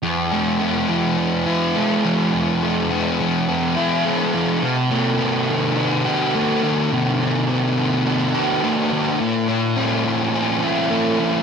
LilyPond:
\new Staff \with { instrumentName = "Distorted electric guitar" } { \time 4/4 \key f \mixolydian \tempo 4 = 105 f,8 a8 c'8 f8 c'8 f'8 a8 f8 | f,8 a8 c'8 f8 c'8 f'8 a8 f8 | c8 bes8 c'8 ees8 c'8 g'8 bes8 ees8 | c8 bes8 c'8 ees8 c'8 g'8 bes8 ees8 |
bes,8 bes8 des'8 f8 des'8 f'8 bes8 f8 | }